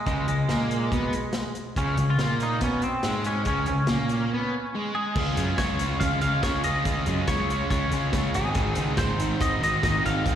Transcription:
0.06 C#2 C#3 G#3, kick, closed hi-hat
0.28 C#2 C#3 G#3, closed hi-hat
0.49 A#2 A#3, snare, closed hi-hat
0.71 closed hi-hat
0.92 B2 B3, kick, closed hi-hat
1.13 closed hi-hat
1.33 snare, closed hi-hat
1.55 closed hi-hat
1.76 C#2 C#3 C#4, kick, closed hi-hat
1.97 C#2 C#3, closed hi-hat
2.10 F4
2.19 A#2 A#3, snare, closed hi-hat
2.40 D#4, closed hi-hat
2.61 B2 B3 C#4, kick, closed hi-hat
2.82 C4, closed hi-hat
3.03 G#2 G#3, snare, closed hi-hat
3.24 C#4, closed hi-hat
3.45 C#2 C#3 C#4, kick, closed hi-hat
3.66 C#2 C#3 C#4, closed hi-hat
3.87 A#2 A#3, snare, closed hi-hat
4.09 closed hi-hat
4.33 B3
4.75 G#3
4.95 G#4
5.15 C#2 C#3 G#3 C#4 F4, kick, crash
5.37 F#2 C#3 G#3 C#4 F4, closed hi-hat
5.58 C#2 C#3 G#3 C#4 F4 C#5, kick, snare, closed hi-hat
5.79 C#3 G#3 C#4 F4, closed hi-hat
6.00 C#2 C#3 G#3 C#4 F4 F5, kick, closed hi-hat
6.21 C#2 C#3 G#3 C#4 F4 F5, closed hi-hat
6.42 C#2 C#3 G#3 C#4 F4 C#5, kick, snare, closed hi-hat
6.64 C#2 C#3 G#3 C#4 F4 D#5, closed hi-hat
6.85 C#2 C#3 G#3 C#4 F4, kick, closed hi-hat
7.06 F#2 C#3 G#3 C#4 F4, closed hi-hat
7.28 C#2 C#3 G#3 C#4 F4 C#5, kick, snare, closed hi-hat
7.50 C#3 G#3 C#4 F4, closed hi-hat
7.70 C#2 C#3 G#3 C#4 F4 C#5, kick, closed hi-hat
7.91 C#2 C#3 G#3 C#4 F4, closed hi-hat
8.13 C#2 C#3 G#3 C#4 F4, kick, snare, closed hi-hat
8.34 G#1 G#2 D#3 G#3 C4 D#4 G#4, closed hi-hat
8.55 G#1 G#2 D#3 G#3 C4, kick, closed hi-hat
8.59 D#4
8.75 C#2 G#2 D#3 G#3 C4, closed hi-hat
8.80 D#4
8.97 G#1 G#2 D#3 G#3 C4 D#4 C5, kick, snare, closed hi-hat
9.20 G#2 D#3 G#3 C4 D#4, closed hi-hat
9.40 G#1 G#2 D#3 G#3 C4 D#4 D#5, kick, closed hi-hat
9.61 G#1 G#2 D#3 G#3 C4 D#4 D#5, closed hi-hat
9.83 G#1 G#2 D#3 G#3 C4 D#4 D#5, kick, snare, closed hi-hat
10.04 G#1 G#2 D#3 G#3 C4 D#4 F5, closed hi-hat
10.25 G#1 G#2 D#3 G#3 C4 D#4, kick, closed hi-hat

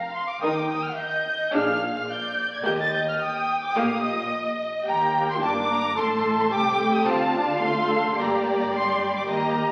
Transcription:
Already playing: F5 A#5
0.13 C6
0.28 D6
0.42 D#2 D#3 D#4 A#4 G5 D#6
0.56 D6
0.70 D#6
0.84 F6
0.97 D#5 G6
1.53 A#1 A#2 D4 G#4 F5 F6
1.96 F6
2.10 D5 G6
2.54 G#6
2.65 D#2 A#3 G4 D#5 G6
2.81 A6
2.94 G6
3.08 F6
3.21 G5 D#6
3.64 D6
3.76 A#1 A#2 A#3 G4 F5 D#6
4.04 D#5
4.87 D#2 A#3 G4 G5 A#5
5.30 C6
5.42 G1 G2 D4 A5 D6
5.70 A#5
5.97 A1 A2 A3 A4 A5 C6
6.39 C6
6.52 C2 C3 A3 G4 G5 D6
6.94 D#6
7.06 D2 D3 C4 F4 F5 A5
7.35 D4 F5
7.61 A3 F4 C6
7.90 A4
8.17 G1 G2 A#3 G4 D5 A#5
8.60 A#5
8.72 G3 G4 C6
9.16 D6
9.28 D#2 A#3 G4 D#5 A#5

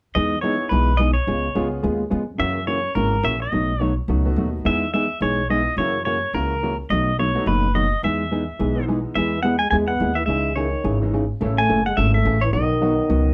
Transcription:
0.15 E2 E3 G#3 B3 D#4 G#4 D#5
0.41 E3 G#3 B3 D#4 E4 G#4 C#5
0.69 B1 E3 G#3 B3 D#4 G#4 B4
0.97 E3 G#3 B3 D#4 G#4 D#5
1.14 C#5
1.27 C#2 C#3 G#3 B3 F4 G#4
1.55 C#2 C#3 G#3 B3 C#4 F4 G#4
1.83 D#2 C#3 G#3 B3 F4 G#4
2.10 F2 C#3 G#3 B3 F4 G#4
2.38 F#2 C#3 E3 A#3 C#4 E4 F#4 E5
2.67 C#3 E3 A#3 C#4 F#4 C#5
2.95 G#1 C#3 E3 A#3 C#4 F#4 A#4
3.23 A#1 C#3 E3 A#3 C#4 F#4 E5
3.42 D#5
3.52 B1 B2 F#3 A3 D#4 F#4
3.80 B2 F#3 A3 D#4 F#4
4.08 C#2 B2 F#3 A3 D#4 F#4
4.25 A3 B3 D#4 F#4
4.36 D#2 B2 F#3 A3 D#4 F#4
4.65 E2 E3 G#3 B3 D#4 E4 G#4 E5
4.94 E3 G#3 B3 D#4 G#4 E5
5.21 B1 E3 G#3 B3 D#4 G#4 C#5
5.50 E3 G#3 B3 D#4 E4 G#4 D#5
5.77 F#2 C#3 E3 F#3 A#3 C#4 E4 F#4 C#5
6.05 C#3 E3 A#3 C#4 F#4 C#5
6.33 C#2 C#3 E3 A#3 C#4 F#4 A#4
6.63 C#3 E3 A#3 C#4 F#4
6.90 B1 B2 F#3 A3 D#4 F#4 D#5
7.19 B2 F#3 A3 D#4 F#4 C#5
7.34 F#3 A3 B3 D#4
7.46 F#1 B2 F#3 A3 D#4 F#4 B4
7.75 B2 F#3 A3 D#4 F#4 D#5
8.03 E2 E3 G#3 B3 D#4 G#4 E5
8.31 E3 G#3 B3 D#4 G#4
8.59 B1 E3 G#3 B3 D#4 G#4
8.76 E3 G#3 B3 D#4
8.88 E3 G#3 B3 D#4 G#4
9.15 E2 E3 G#3 B3 E4 G#4 E5
9.43 E3 G#3 B3 E4 G#4 F#5
9.59 G#3 G#5
9.70 E2 E3 G#3 B3 E4 G#4 G#5
9.86 B3 F#5
10.00 D#2 E3 G#3 B3 E4 G#4
10.15 E3 E5
10.25 C#2 C#3 E3 G#3 E5
10.29 D#4 G#4
10.55 C#3 D#3 E3 D#4 G#4 C#5
10.84 G#1 C#3 E3 D#4 G#4
11.02 E3 G#3 C#4 D#4
11.13 C#3 E3 D#4 G#4
11.41 A1 C#3 E3 A3 C#4 E4 A4
11.58 A3 G#5
11.69 F#1 C#3 E3 A3 C#4 A4
11.86 G#3 F#5
11.97 G#1 C#3 E3 A3 C#4 A4 E5
12.14 A3 E5
12.25 A1 C#3 E3 A3 C#4 A4
12.41 E3 C#5
12.53 B1 B2 D#3 F#3 B3 D#4 F#4 D#5
12.81 B2 F#3 B3 D#4 F#4
13.09 C#2 B2 F#3 B3 D#4 F#4

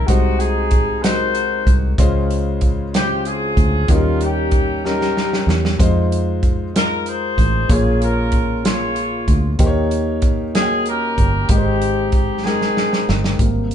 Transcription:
Already playing: G#3 E4 A#4
0.06 C2 C3 G#3 D#4 F#4 C5, kick, closed hi-hat
0.39 D#4 G#4, closed hi-hat
0.71 kick, closed hi-hat
1.02 G#3 D#4 F#4 A#4 C5, snare, closed hi-hat
1.35 closed hi-hat
1.66 C2, kick, closed hi-hat
1.98 C#2 C#3 G#3 C#4 F4 C5, kick, closed hi-hat
2.31 closed hi-hat
2.61 kick, closed hi-hat
2.93 C#3 G#3 E4 G4 C5, snare, closed hi-hat
3.01 F4
3.25 C4 F4 G#4, closed hi-hat
3.57 D2, kick, closed hi-hat
3.88 D#2 D#3 F#3 A#3 C#4 D#4 F4 A#4, kick, closed hi-hat
3.95 G3
4.21 A#3 C#4 G4, closed hi-hat
4.51 kick, closed hi-hat
4.84 G3 C#4 D#4 G4 A#4, snare
5.01 snare
5.17 snare
5.33 snare
5.47 E2, snare
5.65 snare
5.79 F2 G#3 D#4 F4 C5, kick, closed hi-hat
6.12 closed hi-hat
6.43 kick, closed hi-hat
6.74 G#3 D#4 F4 A#4, snare, closed hi-hat
7.06 D#4 G#4 C5, closed hi-hat
7.38 A1, kick, closed hi-hat
7.69 A#1 A#2 A#3 C#4 F4 G#4 C#5, kick, closed hi-hat
8.02 C#4 F4 A#4, closed hi-hat
8.32 kick, closed hi-hat
8.64 A#3 F4 G#4 C#5 C6, snare, closed hi-hat
8.96 closed hi-hat
9.28 D2, kick, closed hi-hat
9.59 D#2 D#3 A#3 D#4 G4 C5, kick, closed hi-hat
9.66 C#5
9.91 closed hi-hat
10.22 kick, closed hi-hat
10.54 A#3 D#4 F#4 G#4 C#5, snare, closed hi-hat
10.62 G5
10.86 A#4, closed hi-hat
10.90 C#4 G4
11.18 G1, kick, closed hi-hat
11.49 G#1 G#2 G#3 C4 D#4 G4 A#4, kick, closed hi-hat
11.58 C5
11.82 closed hi-hat
12.12 G4, kick, closed hi-hat
12.44 G#3 C4 D#4 G#4 A#4 G5, snare
12.62 snare
12.77 snare
12.93 snare
13.09 G1, snare
13.24 snare
13.39 G#1 C3 G3 A#3, kick, closed hi-hat
13.71 closed hi-hat

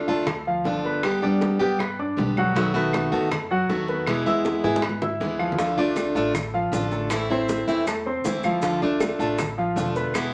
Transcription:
0.08 D2 A3 D4 F4 A4 A5, high bongo, high conga
0.26 muted steel-string acoustic guitar stroke, high bongo, high conga, low conga, claves
0.46 F3 F4 F5, high conga
0.64 G1 D3 A3 D4 F4, high bongo, low bongo, high conga
0.84 B3 B4 B5, high bongo, high conga
1.03 D3 G3 B3 G4, high bongo, high conga, claves
1.22 G3 B3 D4 G4 D5 D6, high bongo, high conga
1.41 high bongo, high conga
1.59 G2 G3 B3 G4 G5, high bongo
1.79 B3 B4 B5, muted steel-string acoustic guitar stroke, high bongo, high conga, claves
1.99 D4 D5 D6, high conga
2.17 B1 D3 G3 B3 G4, high bongo, low bongo, high conga
2.37 F#3 F#4 F#5, high bongo, high conga, claves
2.54 B2 D#3 F#3 A3 B3 F#4 F#5, high bongo, high conga
2.74 D#3 A3 B3 F#4 B4 B5, high bongo, high conga
2.93 high bongo, high conga, claves
3.12 F#2 D#3 A3 B3 F#4 A4 A5, high bongo, high conga
3.31 muted steel-string acoustic guitar stroke, high bongo, high conga, low conga, claves
3.51 F#3 F#4 F#5, high conga
3.69 E2 D#3 A3 B3 F#4, high bongo, low bongo, high conga
3.88 B3 B4 B5, high bongo, high conga
4.07 B2 E3 G#3 B3 E4, high bongo, high conga, claves
4.26 E3 G#3 B3 E4 E5 E6, high bongo, high conga
4.45 high bongo, high conga
4.63 G#2 E3 G#3 B3 E4 G#4 G#5, high bongo, high conga
4.76 high conga
4.82 B3 B4 B5, muted steel-string acoustic guitar stroke, high bongo, claves
4.89 high conga
5.02 E4 E5 E6, low conga
5.20 D2 E3 G#3 B3 E4, high bongo, low bongo
5.39 F3 F4 F5, high bongo, claves
5.52 low conga
5.59 D3 F3 A3 D4 F4 F5, high bongo, high conga, maracas
5.77 A3 D4 F4 D5 D6, high bongo, high conga
5.96 high bongo, high conga, claves, maracas
6.15 A1 A3 D4 F4 A4 A5, high bongo, high conga, maracas
6.34 muted steel-string acoustic guitar stroke, high bongo, high conga, low conga, claves, maracas
6.54 F3 F4 F5, high conga
6.72 A1 D3 A3 D4 F4, high bongo, low bongo, high conga, maracas
6.91 A3 A4 A5, high bongo, high conga, maracas
7.10 E3 A3 C4 E4, high bongo, high conga, claves, maracas
7.30 A3 C4 E4 C5 C6, high bongo, high conga
7.49 high bongo, high conga, maracas
7.68 E2 E3 A3 C4 E4 E5, high bongo, maracas
7.86 A3 A4 A5, muted steel-string acoustic guitar stroke, high bongo, high conga, claves, maracas
8.06 C4 C5 C6, high conga
8.24 D2 E3 A3 C4 E4, high bongo, low bongo, high conga, maracas
8.43 F3 F4 F5, high bongo, high conga, claves, maracas
8.62 D3 F3 A3 D4 F4 F5, high bongo, high conga, maracas
8.82 A3 D4 F4 D5 D6, high bongo, high conga
9.00 high bongo, high conga, claves, maracas
9.19 A1 A3 D4 F4 A4 A5, high bongo, high conga, maracas
9.38 muted steel-string acoustic guitar stroke, high bongo, high conga, low conga, claves, maracas
9.58 F3 F4 F5, high conga
9.76 E1 D3 A3 D4 F4, high bongo, low bongo, high conga, maracas
9.96 B3 B4 B5, high bongo, high conga, maracas
10.14 B2 E3 G#3 B3 E4, high bongo, high conga, claves, maracas

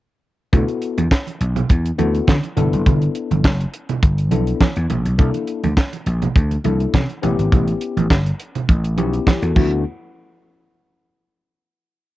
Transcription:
0.53 D2 B3 E4 F#4 A4, kick, closed hi-hat, muted conga, low conga
0.68 closed hi-hat
0.82 closed hi-hat
0.98 E2, closed hi-hat, high conga
1.11 kick, snare, clap
1.27 closed hi-hat, muted conga
1.40 B1, closed hi-hat
1.56 closed hi-hat, low conga
1.69 E2, kick, closed hi-hat, muted conga
1.85 closed hi-hat
1.98 D2 B3 E4 F#4 A4, closed hi-hat, high conga
2.15 closed hi-hat
2.27 D3, kick, snare, clap, high conga
2.43 closed hi-hat, muted conga
2.57 G1 B3 D4 E4 A4, closed hi-hat, high conga, low conga
2.72 F#1, closed hi-hat
2.86 G1, kick, closed hi-hat, muted conga, low conga
3.02 closed hi-hat
3.15 closed hi-hat
3.31 G1, closed hi-hat, high conga
3.44 F#1, kick, snare, clap, muted conga
3.60 closed hi-hat
3.74 closed hi-hat
3.89 closed hi-hat, low conga
4.03 G1, kick, closed hi-hat
4.18 closed hi-hat
4.31 B1 B3 D4 E4 A4, closed hi-hat, high conga
4.47 closed hi-hat
4.61 kick, snare, clap, high conga
4.76 E2, closed hi-hat
4.90 A#1, closed hi-hat, high conga, low conga
5.05 B1, closed hi-hat
5.18 C2 A#3 D4 E4 A4, kick, closed hi-hat, low conga
5.34 closed hi-hat, muted conga
5.47 closed hi-hat
5.64 D2, closed hi-hat, high conga
5.77 kick, snare, clap, muted conga
5.93 closed hi-hat, muted conga
6.06 A#1, closed hi-hat
6.22 closed hi-hat, low conga
6.36 D2, kick, closed hi-hat, muted conga
6.51 closed hi-hat, muted conga
6.64 C2 A#3 D4 E4 A4, closed hi-hat, high conga
6.80 closed hi-hat
6.94 C3, kick, snare, clap, muted conga, high conga
7.09 closed hi-hat
7.22 A1 B3 C#4 E4 G4, closed hi-hat, high conga, low conga
7.38 G#1, closed hi-hat
7.52 A1, kick, closed hi-hat, muted conga, low conga
7.67 closed hi-hat, muted conga
7.81 closed hi-hat
7.97 A1, closed hi-hat, high conga
8.10 G1, kick, snare, clap, muted conga
8.26 closed hi-hat
8.39 closed hi-hat
8.55 closed hi-hat, low conga
8.69 A1, kick, closed hi-hat, muted conga
8.84 closed hi-hat
8.97 B1 B3 C#4 E4 G4, closed hi-hat, high conga
9.13 closed hi-hat
9.27 E4 G4, kick, snare, clap, muted conga, high conga
9.42 E2 F#4 A4, closed hi-hat
9.56 D2 A3 B3 E4 F#4, kick, crash, high conga

